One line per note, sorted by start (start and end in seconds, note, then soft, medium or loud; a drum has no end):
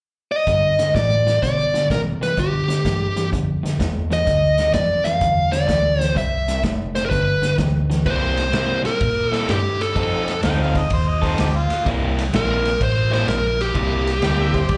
0.32 0.95 D#5 medium
0.47 0.93 G2 medium
0.47 0.76 G2 medium
0.47 0.76 D3 medium
0.47 kick medium
0.47 snare soft
0.47 closed hi-hat medium
0.79 0.93 G2 medium
0.79 0.93 D3 medium
0.79 snare soft
0.79 closed hi-hat medium
0.94 1.23 G2 medium
0.94 1.41 A2 medium
0.94 1.23 E3 medium
0.94 1.42 D5 medium
0.94 kick medium
0.94 snare loud
0.94 closed hi-hat medium
1.27 1.41 G2 medium
1.27 1.41 E3 medium
1.27 snare soft
1.27 closed hi-hat medium
1.43 1.71 G2 medium
1.43 1.88 B2 medium
1.43 1.71 D3 medium
1.43 1.87 D5 medium
1.43 kick medium
1.43 snare soft
1.43 closed hi-hat medium
1.74 1.88 G2 medium
1.74 1.88 D3 medium
1.74 snare soft
1.74 closed hi-hat medium
1.90 2.19 G2 medium
1.90 2.36 C3 medium
1.90 2.19 E3 medium
1.90 2.00 A#4 medium
1.90 kick medium
1.90 snare loud
1.90 closed hi-hat medium
2.21 2.35 G2 medium
2.21 2.35 E3 medium
2.21 2.38 B4 medium
2.21 snare soft
2.21 closed hi-hat medium
2.37 2.66 G2 medium
2.37 2.65 D3 medium
2.37 2.83 D3 medium
2.37 3.29 G4 medium
2.37 kick medium
2.37 closed hi-hat medium
2.68 2.83 G2 medium
2.68 2.83 D3 medium
2.68 snare soft
2.68 closed hi-hat medium
2.85 3.31 G2 medium
2.85 3.13 G2 medium
2.85 3.13 E3 medium
2.85 kick medium
2.85 snare medium
2.85 closed hi-hat medium
3.17 3.30 G2 medium
3.17 3.31 E3 medium
3.17 snare soft
3.17 closed hi-hat soft
3.32 3.79 F2 medium
3.32 3.60 G2 medium
3.32 3.61 D3 medium
3.32 kick medium
3.32 closed hi-hat medium
3.63 3.78 G2 medium
3.63 3.78 D3 medium
3.63 snare soft
3.63 closed hi-hat medium
3.80 4.26 E2 medium
3.80 4.08 G2 medium
3.80 4.08 E3 medium
3.80 kick medium
3.80 snare loud
3.80 closed hi-hat medium
4.10 4.25 G2 medium
4.10 4.25 E3 medium
4.10 4.73 D#5 medium
4.10 snare soft
4.10 closed hi-hat soft
4.26 4.73 D2 medium
4.26 4.55 G2 medium
4.26 4.55 D3 medium
4.26 kick medium
4.26 snare soft
4.26 closed hi-hat medium
4.58 4.73 G2 medium
4.58 4.73 D3 medium
4.58 snare soft
4.58 closed hi-hat medium
4.73 5.20 F2 medium
4.73 5.03 G2 medium
4.73 5.03 E3 medium
4.73 5.06 D5 medium
4.73 kick medium
4.73 snare loud
4.73 closed hi-hat medium
5.04 5.20 G2 medium
5.04 5.20 E3 medium
5.04 5.54 F5 medium
5.04 snare soft
5.04 closed hi-hat medium
5.21 5.68 E2 medium
5.21 5.50 G2 medium
5.21 5.50 D3 medium
5.21 kick medium
5.21 closed hi-hat medium
5.52 5.66 G2 medium
5.52 5.67 D3 medium
5.52 6.02 D5 medium
5.52 snare soft
5.52 closed hi-hat medium
5.67 6.15 D2 medium
5.67 5.96 G2 medium
5.67 5.97 E3 medium
5.67 kick medium
5.67 snare loud
5.67 closed hi-hat medium
5.99 6.14 G2 medium
5.99 6.14 E3 medium
5.99 6.17 C5 medium
5.99 snare soft
5.99 closed hi-hat medium
6.15 6.62 C2 medium
6.15 6.44 C3 medium
6.15 6.45 G3 medium
6.15 6.61 E5 medium
6.15 kick medium
6.15 closed hi-hat medium
6.48 6.62 C3 medium
6.48 6.63 G3 medium
6.48 snare soft
6.48 closed hi-hat medium
6.63 7.10 F1 medium
6.63 6.92 C3 medium
6.63 6.92 A3 medium
6.63 kick medium
6.63 snare loud
6.63 closed hi-hat medium
6.95 7.10 C3 medium
6.95 7.10 A3 medium
6.95 7.05 C5 medium
6.95 snare soft
6.95 closed hi-hat medium
7.06 7.09 A#4 medium
7.10 7.57 G1 medium
7.10 7.40 G2 medium
7.10 7.40 D3 medium
7.10 7.55 B4 medium
7.10 kick medium
7.10 closed hi-hat medium
7.42 7.57 G2 medium
7.42 7.57 D3 medium
7.42 snare soft
7.42 closed hi-hat medium
7.58 8.05 D2 medium
7.58 7.87 G2 medium
7.58 7.87 E3 medium
7.58 kick medium
7.58 snare loud
7.58 closed hi-hat medium
7.90 8.04 G2 medium
7.90 8.04 E3 medium
7.90 snare soft
7.90 closed hi-hat soft
8.06 8.52 C2 medium
8.06 8.43 C3 medium
8.06 8.43 G3 medium
8.06 8.43 A#3 medium
8.06 8.43 E4 medium
8.06 8.81 C5 medium
8.06 kick medium
8.06 ride medium
8.37 snare soft
8.37 ride medium
8.52 8.89 C3 medium
8.52 8.83 C3 medium
8.52 8.89 G3 medium
8.52 8.90 A#3 medium
8.52 8.90 E4 medium
8.52 snare loud
8.52 ride medium
8.85 9.31 A#4 medium
8.85 muted fingered electric bass stroke soft
8.85 snare soft
8.85 ride medium
9.01 9.47 A#2 medium
9.01 kick loud
9.01 ride medium
9.31 9.58 C3 medium
9.31 9.58 G3 medium
9.31 9.57 A#3 medium
9.31 9.58 E4 medium
9.31 9.51 A4 medium
9.31 snare soft
9.31 ride medium
9.49 9.95 G2 medium
9.49 9.82 G4 medium
9.49 snare loud
9.49 ride medium
9.81 10.40 A4 medium
9.81 snare soft
9.81 ride medium
9.95 10.42 F2 medium
9.95 10.32 F3 medium
9.95 10.32 C4 medium
9.95 10.32 D#4 medium
9.95 10.32 A4 medium
9.95 kick medium
9.95 ride medium
10.28 snare soft
10.28 ride medium
10.43 10.90 D2 medium
10.43 10.79 F3 medium
10.43 10.80 C4 medium
10.43 10.80 D#4 medium
10.43 10.80 A4 medium
10.43 10.60 G5 medium
10.43 snare loud
10.43 ride medium
10.62 10.79 F5 medium
10.75 10.91 D#5 medium
10.75 kick medium
10.75 snare soft
10.75 ride medium
10.90 11.37 D#2 medium
10.90 11.10 C5 medium
10.90 kick loud
10.90 ride medium
11.08 11.26 D#5 medium
11.22 11.48 F3 medium
11.22 11.48 C4 medium
11.22 11.47 D#4 medium
11.22 11.47 A4 medium
11.22 11.43 C5 medium
11.22 kick medium
11.22 snare soft
11.22 ride medium
11.38 11.68 D2 medium
11.38 11.57 G4 medium
11.38 snare loud
11.38 ride medium
11.56 11.85 F4 medium
11.70 muted fingered electric bass stroke soft
11.70 snare soft
11.70 ride medium
11.85 12.32 C2 medium
11.85 12.21 C3 medium
11.85 12.22 G3 medium
11.85 12.22 A#3 medium
11.85 12.22 E4 medium
11.85 kick loud
11.85 snare soft
11.85 ride medium
12.18 snare soft
12.18 ride medium
12.33 12.79 A#1 medium
12.33 12.69 C3 medium
12.33 12.69 G3 medium
12.33 12.70 A#3 medium
12.33 12.70 E4 medium
12.33 12.83 A#4 loud
12.33 snare loud
12.33 ride medium
12.65 snare soft
12.65 ride medium
12.81 13.26 A1 medium
12.81 13.11 C5 medium
12.81 kick loud
12.81 ride medium
13.11 13.37 C3 medium
13.11 13.37 G3 medium
13.11 13.37 A#3 medium
13.11 13.37 E4 medium
13.11 13.28 C5 medium
13.11 snare soft
13.11 ride medium
13.28 13.74 A#1 medium
13.28 13.60 A#4 medium
13.28 snare loud
13.28 ride medium
13.61 14.77 G4 medium
13.61 snare soft
13.61 ride medium
13.74 14.21 C2 medium
13.74 14.11 C3 medium
13.74 14.11 G3 medium
13.74 14.11 A#3 medium
13.74 14.11 E4 medium
13.74 kick loud
13.74 ride medium
14.07 snare soft
14.07 ride medium
14.22 14.68 D2 medium
14.22 14.58 C3 medium
14.22 14.58 G3 medium
14.22 14.59 A#3 medium
14.22 14.59 E4 medium
14.22 14.38 G5 medium
14.22 snare medium
14.22 ride medium
14.40 14.57 E5 medium
14.54 14.72 C5 medium
14.54 kick medium
14.54 snare soft
14.54 ride medium
14.69 14.77 E2 medium
14.69 14.77 D5 medium
14.69 kick loud
14.69 snare soft
14.69 ride medium